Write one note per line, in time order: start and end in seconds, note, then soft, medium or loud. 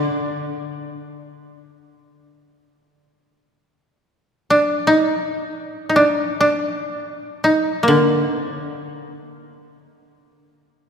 0.00 2.65 D3 soft
0.00 2.22 D4 medium
4.50 4.93 D4 medium
4.87 5.89 D#4 medium
5.89 6.02 D#4 soft
5.96 6.40 D4 medium
6.41 7.50 D4 medium
7.44 7.89 D#4 medium
7.83 8.24 A#3 medium
7.88 10.89 D3 soft
8.24 8.39 B3 medium
8.39 8.55 C4 medium
8.55 8.71 C#4 medium
8.71 10.54 D4 medium